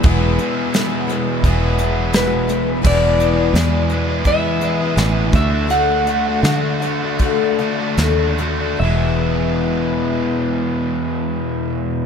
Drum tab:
CC |--------|x-------|--------|--------|
HH |xxxxxxxx|-xxxxxxx|xxxxxxxx|--------|
SD |--o---o-|--o---o-|--o---o-|--------|
BD |o---o---|o---o--o|----o---|--------|